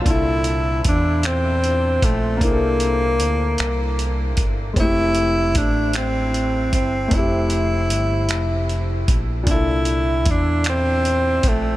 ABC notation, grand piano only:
X:1
M:6/8
L:1/8
Q:3/8=51
K:Cmix
V:1 name="Grand piano"
[B,,DEA]6 | [B,DE_A=A]6 | [_A,=A,CEG]6 | [A,CEG]6 |
[B,,DEA]6 |]